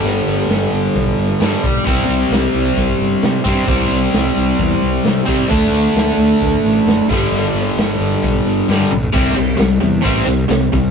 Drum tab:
CC |----------------|----------------|----------------|----------------|
HH |x-x-x-x-x-x-x-x-|x-x-x-x-x-x-x-x-|x-x-x-x-x-x-x-x-|x-x-x-x-x-x-x-x-|
TB |----x-------x---|----x-------x---|----x-------x---|----x-------x---|
SD |----o-------o---|----o-------o---|----o-------o---|----o-------o---|
T1 |----------------|----------------|----------------|----------------|
T2 |----------------|----------------|----------------|----------------|
FT |----------------|----------------|----------------|----------------|
BD |--------o-----o-|o-------o-----o-|o-------o-----o-|o-------o-----o-|

CC |----------------|x---------------|
HH |x-x-x-x-x-x-----|--x-x-x-x-x-x-x-|
TB |----x-----------|----x-------x---|
SD |----o-------o---|----o-------o---|
T1 |-------------o--|----------------|
T2 |--------------o-|----------------|
FT |---------------o|----------------|
BD |--------o-------|o-------o-----o-|